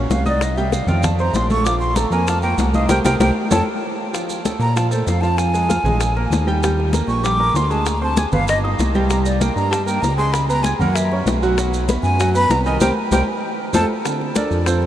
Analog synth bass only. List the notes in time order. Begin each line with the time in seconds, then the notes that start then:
0.10 C2
0.87 F2
1.33 A#1
2.11 F2
2.58 C2
2.89 C2
3.04 C2
3.19 C2
3.51 F2
4.59 A#2
5.07 F2
5.84 A#1
6.30 D#2
7.08 A#1
7.54 D2
8.32 G1
8.79 C2
9.56 G2
10.02 C#2
10.79 F#2
11.25 B1
12.03 F#2
12.49 C2
12.80 C2
13.11 C2
13.73 F2
14.51 F2